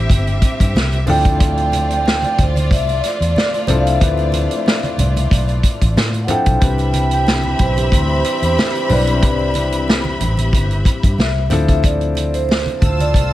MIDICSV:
0, 0, Header, 1, 7, 480
1, 0, Start_track
1, 0, Tempo, 652174
1, 1031, Time_signature, 4, 2, 24, 8
1, 9811, End_track
2, 0, Start_track
2, 0, Title_t, "Vibraphone"
2, 0, Program_c, 0, 11
2, 807, Note_on_c, 0, 79, 106
2, 1413, Note_off_c, 0, 79, 0
2, 1421, Note_on_c, 0, 79, 105
2, 1772, Note_off_c, 0, 79, 0
2, 1774, Note_on_c, 0, 72, 84
2, 2009, Note_off_c, 0, 72, 0
2, 2009, Note_on_c, 0, 76, 95
2, 2247, Note_off_c, 0, 76, 0
2, 2252, Note_on_c, 0, 74, 94
2, 2802, Note_on_c, 0, 77, 68
2, 2812, Note_off_c, 0, 74, 0
2, 2849, Note_off_c, 0, 77, 0
2, 2850, Note_on_c, 0, 76, 80
2, 4256, Note_off_c, 0, 76, 0
2, 4595, Note_on_c, 0, 78, 71
2, 4637, Note_off_c, 0, 78, 0
2, 4638, Note_on_c, 0, 79, 97
2, 5242, Note_off_c, 0, 79, 0
2, 5251, Note_on_c, 0, 79, 98
2, 5602, Note_on_c, 0, 72, 88
2, 5606, Note_off_c, 0, 79, 0
2, 6210, Note_off_c, 0, 72, 0
2, 6219, Note_on_c, 0, 72, 85
2, 6536, Note_off_c, 0, 72, 0
2, 6569, Note_on_c, 0, 74, 84
2, 7250, Note_off_c, 0, 74, 0
2, 8238, Note_on_c, 0, 76, 85
2, 8579, Note_off_c, 0, 76, 0
2, 8607, Note_on_c, 0, 76, 87
2, 8718, Note_off_c, 0, 76, 0
2, 8719, Note_on_c, 0, 74, 88
2, 9060, Note_off_c, 0, 74, 0
2, 9084, Note_on_c, 0, 72, 85
2, 9133, Note_off_c, 0, 72, 0
2, 9201, Note_on_c, 0, 72, 78
2, 9541, Note_off_c, 0, 72, 0
2, 9571, Note_on_c, 0, 74, 85
2, 9811, Note_off_c, 0, 74, 0
2, 9811, End_track
3, 0, Start_track
3, 0, Title_t, "String section"
3, 0, Program_c, 1, 48
3, 0, Note_on_c, 1, 60, 79
3, 0, Note_on_c, 1, 67, 75
3, 0, Note_on_c, 1, 76, 90
3, 762, Note_off_c, 1, 67, 0
3, 763, Note_off_c, 1, 60, 0
3, 764, Note_off_c, 1, 76, 0
3, 795, Note_on_c, 1, 57, 82
3, 795, Note_on_c, 1, 65, 84
3, 798, Note_on_c, 1, 74, 94
3, 4603, Note_off_c, 1, 57, 0
3, 4603, Note_off_c, 1, 65, 0
3, 4604, Note_off_c, 1, 74, 0
3, 4879, Note_on_c, 1, 76, 80
3, 4880, Note_on_c, 1, 67, 76
3, 4881, Note_on_c, 1, 83, 88
3, 8447, Note_off_c, 1, 67, 0
3, 8447, Note_off_c, 1, 76, 0
3, 8447, Note_off_c, 1, 83, 0
3, 9429, Note_on_c, 1, 65, 85
3, 9431, Note_on_c, 1, 81, 99
3, 9434, Note_on_c, 1, 88, 89
3, 9811, Note_off_c, 1, 65, 0
3, 9811, Note_off_c, 1, 81, 0
3, 9811, Note_off_c, 1, 88, 0
3, 9811, End_track
4, 0, Start_track
4, 0, Title_t, "Grand piano"
4, 0, Program_c, 2, 0
4, 0, Control_c, 2, 64, 127
4, 0, Note_on_c, 2, 55, 70
4, 0, Note_on_c, 2, 60, 63
4, 0, Note_on_c, 2, 62, 61
4, 0, Note_on_c, 2, 64, 61
4, 0, Note_on_c, 2, 72, 75
4, 783, Note_on_c, 2, 53, 79
4, 790, Note_off_c, 2, 60, 0
4, 790, Note_on_c, 2, 60, 69
4, 793, Note_off_c, 2, 62, 0
4, 793, Note_on_c, 2, 62, 73
4, 799, Note_off_c, 2, 64, 0
4, 799, Control_c, 2, 64, 0
4, 799, Note_on_c, 2, 64, 67
4, 802, Note_off_c, 2, 72, 0
4, 807, Note_off_c, 2, 55, 0
4, 807, Note_on_c, 2, 69, 83
4, 946, Control_c, 2, 64, 127
4, 1559, Note_off_c, 2, 53, 0
4, 1562, Note_off_c, 2, 60, 0
4, 1564, Note_off_c, 2, 62, 0
4, 1567, Note_off_c, 2, 64, 0
4, 1571, Note_off_c, 2, 69, 0
4, 2703, Note_on_c, 2, 53, 74
4, 2709, Note_on_c, 2, 60, 69
4, 2715, Note_on_c, 2, 62, 69
4, 2721, Note_on_c, 2, 64, 68
4, 2725, Note_on_c, 2, 69, 85
4, 2869, Note_off_c, 2, 53, 0
4, 2872, Note_off_c, 2, 60, 0
4, 2875, Note_off_c, 2, 62, 0
4, 2878, Note_off_c, 2, 64, 0
4, 2880, Note_off_c, 2, 69, 0
4, 2945, Note_on_c, 2, 53, 69
4, 2951, Note_on_c, 2, 60, 59
4, 2953, Note_on_c, 2, 62, 60
4, 2962, Note_on_c, 2, 64, 63
4, 2966, Note_on_c, 2, 71, 78
4, 3576, Note_off_c, 2, 53, 0
4, 3579, Note_off_c, 2, 60, 0
4, 3580, Note_off_c, 2, 62, 0
4, 3585, Note_off_c, 2, 64, 0
4, 3587, Note_off_c, 2, 71, 0
4, 4616, Note_on_c, 2, 53, 69
4, 4625, Note_on_c, 2, 60, 65
4, 4627, Note_on_c, 2, 62, 66
4, 4633, Note_on_c, 2, 64, 65
4, 4640, Note_on_c, 2, 69, 82
4, 4785, Note_off_c, 2, 53, 0
4, 4790, Note_off_c, 2, 60, 0
4, 4790, Note_off_c, 2, 62, 0
4, 4793, Note_off_c, 2, 64, 0
4, 4797, Note_off_c, 2, 69, 0
4, 4858, Note_on_c, 2, 55, 64
4, 4862, Note_on_c, 2, 60, 62
4, 4870, Note_on_c, 2, 62, 62
4, 4873, Note_on_c, 2, 64, 63
4, 4879, Note_on_c, 2, 71, 74
4, 4881, Control_c, 2, 64, 0
4, 5011, Control_c, 2, 64, 127
4, 5493, Note_off_c, 2, 55, 0
4, 5494, Note_off_c, 2, 60, 0
4, 5498, Note_off_c, 2, 62, 0
4, 5500, Note_off_c, 2, 64, 0
4, 5503, Note_off_c, 2, 71, 0
4, 6541, Note_on_c, 2, 55, 77
4, 6547, Note_on_c, 2, 60, 68
4, 6552, Note_on_c, 2, 62, 63
4, 6557, Note_on_c, 2, 64, 65
4, 6563, Note_on_c, 2, 71, 80
4, 6708, Note_off_c, 2, 55, 0
4, 6711, Note_off_c, 2, 60, 0
4, 6713, Note_off_c, 2, 62, 0
4, 6716, Note_off_c, 2, 64, 0
4, 6719, Note_off_c, 2, 71, 0
4, 6780, Note_on_c, 2, 55, 69
4, 6786, Note_on_c, 2, 60, 64
4, 6790, Note_on_c, 2, 62, 63
4, 6798, Note_on_c, 2, 64, 64
4, 6802, Note_on_c, 2, 71, 75
4, 7414, Note_off_c, 2, 55, 0
4, 7417, Note_off_c, 2, 60, 0
4, 7419, Note_off_c, 2, 62, 0
4, 7423, Note_off_c, 2, 64, 0
4, 7425, Note_off_c, 2, 71, 0
4, 8463, Note_on_c, 2, 53, 78
4, 8469, Note_on_c, 2, 60, 76
4, 8475, Note_on_c, 2, 62, 73
4, 8481, Note_on_c, 2, 64, 72
4, 8482, Control_c, 2, 64, 0
4, 8484, Note_on_c, 2, 69, 88
4, 8605, Control_c, 2, 64, 127
4, 9240, Note_off_c, 2, 53, 0
4, 9243, Note_off_c, 2, 60, 0
4, 9246, Note_off_c, 2, 62, 0
4, 9249, Note_off_c, 2, 64, 0
4, 9250, Note_off_c, 2, 69, 0
4, 9811, End_track
5, 0, Start_track
5, 0, Title_t, "Trombone section"
5, 0, Program_c, 3, 61
5, 4867, Note_on_c, 3, 43, 72
5, 4867, Note_on_c, 3, 52, 74
5, 4867, Note_on_c, 3, 60, 81
5, 8200, Note_off_c, 3, 43, 0
5, 8200, Note_off_c, 3, 52, 0
5, 8200, Note_off_c, 3, 60, 0
5, 9427, Note_on_c, 3, 57, 80
5, 9428, Note_on_c, 3, 65, 88
5, 9429, Note_on_c, 3, 60, 81
5, 9811, Note_off_c, 3, 57, 0
5, 9811, Note_off_c, 3, 60, 0
5, 9811, Note_off_c, 3, 65, 0
5, 9811, End_track
6, 0, Start_track
6, 0, Title_t, "Fingered electric bass"
6, 0, Program_c, 4, 33
6, 73, Note_on_c, 4, 31, 99
6, 286, Note_off_c, 4, 31, 0
6, 444, Note_on_c, 4, 43, 82
6, 541, Note_off_c, 4, 43, 0
6, 550, Note_on_c, 4, 36, 81
6, 764, Note_off_c, 4, 36, 0
6, 794, Note_on_c, 4, 38, 95
6, 1647, Note_off_c, 4, 38, 0
6, 1756, Note_on_c, 4, 38, 98
6, 1994, Note_off_c, 4, 38, 0
6, 1994, Note_on_c, 4, 36, 106
6, 2206, Note_off_c, 4, 36, 0
6, 2358, Note_on_c, 4, 40, 82
6, 2457, Note_off_c, 4, 40, 0
6, 2707, Note_on_c, 4, 36, 80
6, 2922, Note_off_c, 4, 36, 0
6, 2954, Note_on_c, 4, 38, 105
6, 3281, Note_off_c, 4, 38, 0
6, 3664, Note_on_c, 4, 36, 95
6, 3880, Note_off_c, 4, 36, 0
6, 3908, Note_on_c, 4, 35, 97
6, 4122, Note_off_c, 4, 35, 0
6, 4278, Note_on_c, 4, 33, 85
6, 4377, Note_off_c, 4, 33, 0
6, 4387, Note_on_c, 4, 45, 82
6, 4602, Note_off_c, 4, 45, 0
6, 4755, Note_on_c, 4, 35, 82
6, 4855, Note_off_c, 4, 35, 0
6, 4871, Note_on_c, 4, 36, 98
6, 5561, Note_off_c, 4, 36, 0
6, 5589, Note_on_c, 4, 35, 87
6, 5803, Note_off_c, 4, 35, 0
6, 5826, Note_on_c, 4, 38, 96
6, 6042, Note_off_c, 4, 38, 0
6, 6197, Note_on_c, 4, 40, 75
6, 6297, Note_off_c, 4, 40, 0
6, 6549, Note_on_c, 4, 35, 84
6, 6791, Note_off_c, 4, 35, 0
6, 6791, Note_on_c, 4, 36, 105
6, 7482, Note_off_c, 4, 36, 0
6, 7511, Note_on_c, 4, 33, 90
6, 7725, Note_off_c, 4, 33, 0
6, 7748, Note_on_c, 4, 31, 97
6, 7963, Note_off_c, 4, 31, 0
6, 8123, Note_on_c, 4, 43, 81
6, 8220, Note_off_c, 4, 43, 0
6, 8232, Note_on_c, 4, 36, 81
6, 8445, Note_off_c, 4, 36, 0
6, 8476, Note_on_c, 4, 38, 100
6, 9328, Note_off_c, 4, 38, 0
6, 9435, Note_on_c, 4, 38, 94
6, 9672, Note_off_c, 4, 38, 0
6, 9672, Note_on_c, 4, 36, 100
6, 9811, Note_off_c, 4, 36, 0
6, 9811, End_track
7, 0, Start_track
7, 0, Title_t, "Drums"
7, 71, Note_on_c, 9, 36, 91
7, 77, Note_on_c, 9, 62, 31
7, 77, Note_on_c, 9, 63, 69
7, 78, Note_on_c, 9, 42, 75
7, 144, Note_off_c, 9, 36, 0
7, 150, Note_off_c, 9, 62, 0
7, 150, Note_off_c, 9, 63, 0
7, 151, Note_off_c, 9, 42, 0
7, 199, Note_on_c, 9, 42, 32
7, 203, Note_on_c, 9, 62, 30
7, 273, Note_off_c, 9, 42, 0
7, 276, Note_off_c, 9, 62, 0
7, 308, Note_on_c, 9, 36, 86
7, 308, Note_on_c, 9, 42, 83
7, 381, Note_off_c, 9, 42, 0
7, 382, Note_off_c, 9, 36, 0
7, 443, Note_on_c, 9, 36, 81
7, 445, Note_on_c, 9, 42, 60
7, 516, Note_off_c, 9, 36, 0
7, 519, Note_off_c, 9, 42, 0
7, 560, Note_on_c, 9, 62, 33
7, 560, Note_on_c, 9, 63, 67
7, 564, Note_on_c, 9, 38, 104
7, 634, Note_off_c, 9, 62, 0
7, 634, Note_off_c, 9, 63, 0
7, 637, Note_off_c, 9, 38, 0
7, 682, Note_on_c, 9, 42, 34
7, 686, Note_on_c, 9, 62, 30
7, 756, Note_off_c, 9, 42, 0
7, 760, Note_off_c, 9, 62, 0
7, 788, Note_on_c, 9, 63, 56
7, 788, Note_on_c, 9, 64, 78
7, 789, Note_on_c, 9, 46, 59
7, 861, Note_off_c, 9, 63, 0
7, 861, Note_off_c, 9, 64, 0
7, 863, Note_off_c, 9, 46, 0
7, 920, Note_on_c, 9, 42, 54
7, 921, Note_on_c, 9, 36, 85
7, 994, Note_off_c, 9, 42, 0
7, 995, Note_off_c, 9, 36, 0
7, 1032, Note_on_c, 9, 42, 85
7, 1033, Note_on_c, 9, 36, 114
7, 1033, Note_on_c, 9, 62, 28
7, 1106, Note_off_c, 9, 42, 0
7, 1107, Note_off_c, 9, 36, 0
7, 1107, Note_off_c, 9, 62, 0
7, 1159, Note_on_c, 9, 42, 35
7, 1232, Note_off_c, 9, 42, 0
7, 1268, Note_on_c, 9, 63, 73
7, 1273, Note_on_c, 9, 42, 71
7, 1342, Note_off_c, 9, 63, 0
7, 1347, Note_off_c, 9, 42, 0
7, 1402, Note_on_c, 9, 42, 49
7, 1475, Note_off_c, 9, 42, 0
7, 1514, Note_on_c, 9, 62, 36
7, 1528, Note_on_c, 9, 38, 110
7, 1588, Note_off_c, 9, 62, 0
7, 1602, Note_off_c, 9, 38, 0
7, 1636, Note_on_c, 9, 63, 70
7, 1649, Note_on_c, 9, 42, 36
7, 1709, Note_off_c, 9, 63, 0
7, 1723, Note_off_c, 9, 42, 0
7, 1755, Note_on_c, 9, 42, 71
7, 1756, Note_on_c, 9, 36, 92
7, 1758, Note_on_c, 9, 64, 66
7, 1829, Note_off_c, 9, 36, 0
7, 1829, Note_off_c, 9, 42, 0
7, 1832, Note_off_c, 9, 64, 0
7, 1886, Note_on_c, 9, 63, 76
7, 1891, Note_on_c, 9, 42, 53
7, 1960, Note_off_c, 9, 63, 0
7, 1964, Note_off_c, 9, 42, 0
7, 1993, Note_on_c, 9, 36, 90
7, 1997, Note_on_c, 9, 62, 32
7, 1997, Note_on_c, 9, 63, 70
7, 2004, Note_on_c, 9, 42, 78
7, 2067, Note_off_c, 9, 36, 0
7, 2070, Note_off_c, 9, 62, 0
7, 2070, Note_off_c, 9, 63, 0
7, 2077, Note_off_c, 9, 42, 0
7, 2117, Note_on_c, 9, 62, 30
7, 2125, Note_on_c, 9, 42, 35
7, 2190, Note_off_c, 9, 62, 0
7, 2199, Note_off_c, 9, 42, 0
7, 2233, Note_on_c, 9, 42, 80
7, 2247, Note_on_c, 9, 38, 31
7, 2307, Note_off_c, 9, 42, 0
7, 2321, Note_off_c, 9, 38, 0
7, 2369, Note_on_c, 9, 42, 55
7, 2443, Note_off_c, 9, 42, 0
7, 2474, Note_on_c, 9, 62, 32
7, 2474, Note_on_c, 9, 63, 72
7, 2487, Note_on_c, 9, 38, 100
7, 2548, Note_off_c, 9, 62, 0
7, 2548, Note_off_c, 9, 63, 0
7, 2561, Note_off_c, 9, 38, 0
7, 2602, Note_on_c, 9, 62, 29
7, 2605, Note_on_c, 9, 42, 36
7, 2676, Note_off_c, 9, 62, 0
7, 2679, Note_off_c, 9, 42, 0
7, 2702, Note_on_c, 9, 63, 56
7, 2702, Note_on_c, 9, 64, 75
7, 2709, Note_on_c, 9, 42, 79
7, 2776, Note_off_c, 9, 63, 0
7, 2776, Note_off_c, 9, 64, 0
7, 2783, Note_off_c, 9, 42, 0
7, 2845, Note_on_c, 9, 42, 54
7, 2919, Note_off_c, 9, 42, 0
7, 2948, Note_on_c, 9, 62, 26
7, 2953, Note_on_c, 9, 36, 112
7, 2954, Note_on_c, 9, 42, 89
7, 3022, Note_off_c, 9, 62, 0
7, 3027, Note_off_c, 9, 36, 0
7, 3028, Note_off_c, 9, 42, 0
7, 3073, Note_on_c, 9, 62, 35
7, 3080, Note_on_c, 9, 42, 34
7, 3147, Note_off_c, 9, 62, 0
7, 3154, Note_off_c, 9, 42, 0
7, 3180, Note_on_c, 9, 63, 71
7, 3190, Note_on_c, 9, 42, 77
7, 3254, Note_off_c, 9, 63, 0
7, 3264, Note_off_c, 9, 42, 0
7, 3318, Note_on_c, 9, 42, 48
7, 3392, Note_off_c, 9, 42, 0
7, 3430, Note_on_c, 9, 62, 36
7, 3443, Note_on_c, 9, 38, 108
7, 3504, Note_off_c, 9, 62, 0
7, 3516, Note_off_c, 9, 38, 0
7, 3556, Note_on_c, 9, 63, 72
7, 3562, Note_on_c, 9, 42, 33
7, 3630, Note_off_c, 9, 63, 0
7, 3636, Note_off_c, 9, 42, 0
7, 3670, Note_on_c, 9, 42, 66
7, 3676, Note_on_c, 9, 64, 68
7, 3744, Note_off_c, 9, 42, 0
7, 3749, Note_off_c, 9, 64, 0
7, 3802, Note_on_c, 9, 63, 75
7, 3804, Note_on_c, 9, 42, 52
7, 3876, Note_off_c, 9, 63, 0
7, 3877, Note_off_c, 9, 42, 0
7, 3910, Note_on_c, 9, 36, 95
7, 3910, Note_on_c, 9, 63, 66
7, 3918, Note_on_c, 9, 42, 78
7, 3984, Note_off_c, 9, 36, 0
7, 3984, Note_off_c, 9, 63, 0
7, 3992, Note_off_c, 9, 42, 0
7, 4034, Note_on_c, 9, 62, 30
7, 4037, Note_on_c, 9, 42, 34
7, 4107, Note_off_c, 9, 62, 0
7, 4111, Note_off_c, 9, 42, 0
7, 4146, Note_on_c, 9, 36, 85
7, 4147, Note_on_c, 9, 42, 87
7, 4220, Note_off_c, 9, 36, 0
7, 4221, Note_off_c, 9, 42, 0
7, 4280, Note_on_c, 9, 36, 77
7, 4281, Note_on_c, 9, 42, 59
7, 4353, Note_off_c, 9, 36, 0
7, 4354, Note_off_c, 9, 42, 0
7, 4393, Note_on_c, 9, 63, 75
7, 4397, Note_on_c, 9, 38, 106
7, 4466, Note_off_c, 9, 63, 0
7, 4470, Note_off_c, 9, 38, 0
7, 4518, Note_on_c, 9, 42, 36
7, 4522, Note_on_c, 9, 62, 29
7, 4591, Note_off_c, 9, 42, 0
7, 4596, Note_off_c, 9, 62, 0
7, 4622, Note_on_c, 9, 42, 76
7, 4624, Note_on_c, 9, 63, 50
7, 4624, Note_on_c, 9, 64, 76
7, 4696, Note_off_c, 9, 42, 0
7, 4697, Note_off_c, 9, 63, 0
7, 4697, Note_off_c, 9, 64, 0
7, 4753, Note_on_c, 9, 42, 57
7, 4757, Note_on_c, 9, 36, 87
7, 4826, Note_off_c, 9, 42, 0
7, 4831, Note_off_c, 9, 36, 0
7, 4864, Note_on_c, 9, 62, 27
7, 4868, Note_on_c, 9, 42, 89
7, 4869, Note_on_c, 9, 36, 112
7, 4938, Note_off_c, 9, 62, 0
7, 4941, Note_off_c, 9, 42, 0
7, 4943, Note_off_c, 9, 36, 0
7, 4992, Note_on_c, 9, 62, 33
7, 4996, Note_on_c, 9, 42, 35
7, 5065, Note_off_c, 9, 62, 0
7, 5069, Note_off_c, 9, 42, 0
7, 5104, Note_on_c, 9, 42, 76
7, 5104, Note_on_c, 9, 63, 75
7, 5177, Note_off_c, 9, 42, 0
7, 5177, Note_off_c, 9, 63, 0
7, 5232, Note_on_c, 9, 42, 51
7, 5306, Note_off_c, 9, 42, 0
7, 5348, Note_on_c, 9, 62, 36
7, 5357, Note_on_c, 9, 38, 106
7, 5422, Note_off_c, 9, 62, 0
7, 5431, Note_off_c, 9, 38, 0
7, 5472, Note_on_c, 9, 62, 34
7, 5472, Note_on_c, 9, 63, 72
7, 5545, Note_off_c, 9, 62, 0
7, 5545, Note_off_c, 9, 63, 0
7, 5585, Note_on_c, 9, 42, 71
7, 5588, Note_on_c, 9, 64, 69
7, 5590, Note_on_c, 9, 36, 90
7, 5658, Note_off_c, 9, 42, 0
7, 5662, Note_off_c, 9, 64, 0
7, 5663, Note_off_c, 9, 36, 0
7, 5719, Note_on_c, 9, 63, 78
7, 5722, Note_on_c, 9, 42, 50
7, 5793, Note_off_c, 9, 63, 0
7, 5796, Note_off_c, 9, 42, 0
7, 5829, Note_on_c, 9, 36, 92
7, 5834, Note_on_c, 9, 63, 68
7, 5837, Note_on_c, 9, 42, 79
7, 5902, Note_off_c, 9, 36, 0
7, 5908, Note_off_c, 9, 63, 0
7, 5910, Note_off_c, 9, 42, 0
7, 5956, Note_on_c, 9, 62, 29
7, 6030, Note_off_c, 9, 62, 0
7, 6068, Note_on_c, 9, 42, 86
7, 6141, Note_off_c, 9, 42, 0
7, 6201, Note_on_c, 9, 42, 58
7, 6275, Note_off_c, 9, 42, 0
7, 6314, Note_on_c, 9, 63, 72
7, 6321, Note_on_c, 9, 38, 101
7, 6388, Note_off_c, 9, 63, 0
7, 6394, Note_off_c, 9, 38, 0
7, 6441, Note_on_c, 9, 42, 34
7, 6514, Note_off_c, 9, 42, 0
7, 6547, Note_on_c, 9, 46, 54
7, 6547, Note_on_c, 9, 63, 50
7, 6547, Note_on_c, 9, 64, 73
7, 6620, Note_off_c, 9, 46, 0
7, 6621, Note_off_c, 9, 63, 0
7, 6621, Note_off_c, 9, 64, 0
7, 6677, Note_on_c, 9, 42, 56
7, 6751, Note_off_c, 9, 42, 0
7, 6790, Note_on_c, 9, 36, 112
7, 6790, Note_on_c, 9, 42, 90
7, 6864, Note_off_c, 9, 36, 0
7, 6864, Note_off_c, 9, 42, 0
7, 6914, Note_on_c, 9, 62, 33
7, 6988, Note_off_c, 9, 62, 0
7, 7021, Note_on_c, 9, 63, 74
7, 7028, Note_on_c, 9, 42, 78
7, 7095, Note_off_c, 9, 63, 0
7, 7101, Note_off_c, 9, 42, 0
7, 7156, Note_on_c, 9, 42, 52
7, 7230, Note_off_c, 9, 42, 0
7, 7271, Note_on_c, 9, 62, 36
7, 7283, Note_on_c, 9, 38, 112
7, 7344, Note_off_c, 9, 62, 0
7, 7357, Note_off_c, 9, 38, 0
7, 7395, Note_on_c, 9, 62, 34
7, 7395, Note_on_c, 9, 63, 77
7, 7469, Note_off_c, 9, 62, 0
7, 7469, Note_off_c, 9, 63, 0
7, 7511, Note_on_c, 9, 42, 69
7, 7512, Note_on_c, 9, 64, 67
7, 7584, Note_off_c, 9, 42, 0
7, 7586, Note_off_c, 9, 64, 0
7, 7635, Note_on_c, 9, 63, 74
7, 7643, Note_on_c, 9, 42, 52
7, 7709, Note_off_c, 9, 63, 0
7, 7717, Note_off_c, 9, 42, 0
7, 7749, Note_on_c, 9, 62, 32
7, 7749, Note_on_c, 9, 63, 71
7, 7750, Note_on_c, 9, 36, 86
7, 7760, Note_on_c, 9, 42, 75
7, 7823, Note_off_c, 9, 36, 0
7, 7823, Note_off_c, 9, 62, 0
7, 7823, Note_off_c, 9, 63, 0
7, 7833, Note_off_c, 9, 42, 0
7, 7880, Note_on_c, 9, 42, 35
7, 7953, Note_off_c, 9, 42, 0
7, 7987, Note_on_c, 9, 36, 89
7, 7991, Note_on_c, 9, 42, 82
7, 8061, Note_off_c, 9, 36, 0
7, 8065, Note_off_c, 9, 42, 0
7, 8121, Note_on_c, 9, 36, 86
7, 8125, Note_on_c, 9, 42, 55
7, 8195, Note_off_c, 9, 36, 0
7, 8199, Note_off_c, 9, 42, 0
7, 8231, Note_on_c, 9, 63, 74
7, 8242, Note_on_c, 9, 38, 110
7, 8305, Note_off_c, 9, 63, 0
7, 8316, Note_off_c, 9, 38, 0
7, 8465, Note_on_c, 9, 63, 55
7, 8465, Note_on_c, 9, 64, 72
7, 8468, Note_on_c, 9, 42, 76
7, 8539, Note_off_c, 9, 63, 0
7, 8539, Note_off_c, 9, 64, 0
7, 8541, Note_off_c, 9, 42, 0
7, 8600, Note_on_c, 9, 36, 82
7, 8600, Note_on_c, 9, 42, 54
7, 8673, Note_off_c, 9, 36, 0
7, 8673, Note_off_c, 9, 42, 0
7, 8706, Note_on_c, 9, 62, 28
7, 8712, Note_on_c, 9, 36, 109
7, 8714, Note_on_c, 9, 42, 88
7, 8779, Note_off_c, 9, 62, 0
7, 8786, Note_off_c, 9, 36, 0
7, 8787, Note_off_c, 9, 42, 0
7, 8838, Note_on_c, 9, 42, 36
7, 8912, Note_off_c, 9, 42, 0
7, 8944, Note_on_c, 9, 63, 72
7, 8954, Note_on_c, 9, 42, 74
7, 9017, Note_off_c, 9, 63, 0
7, 9027, Note_off_c, 9, 42, 0
7, 9081, Note_on_c, 9, 42, 53
7, 9154, Note_off_c, 9, 42, 0
7, 9190, Note_on_c, 9, 62, 37
7, 9210, Note_on_c, 9, 38, 112
7, 9264, Note_off_c, 9, 62, 0
7, 9283, Note_off_c, 9, 38, 0
7, 9316, Note_on_c, 9, 62, 34
7, 9316, Note_on_c, 9, 63, 76
7, 9330, Note_on_c, 9, 42, 33
7, 9390, Note_off_c, 9, 62, 0
7, 9390, Note_off_c, 9, 63, 0
7, 9404, Note_off_c, 9, 42, 0
7, 9434, Note_on_c, 9, 36, 92
7, 9434, Note_on_c, 9, 42, 70
7, 9436, Note_on_c, 9, 64, 69
7, 9507, Note_off_c, 9, 42, 0
7, 9508, Note_off_c, 9, 36, 0
7, 9509, Note_off_c, 9, 64, 0
7, 9564, Note_on_c, 9, 63, 74
7, 9569, Note_on_c, 9, 42, 53
7, 9638, Note_off_c, 9, 63, 0
7, 9642, Note_off_c, 9, 42, 0
7, 9672, Note_on_c, 9, 36, 93
7, 9675, Note_on_c, 9, 62, 31
7, 9675, Note_on_c, 9, 63, 70
7, 9681, Note_on_c, 9, 42, 75
7, 9746, Note_off_c, 9, 36, 0
7, 9748, Note_off_c, 9, 62, 0
7, 9748, Note_off_c, 9, 63, 0
7, 9755, Note_off_c, 9, 42, 0
7, 9811, End_track
0, 0, End_of_file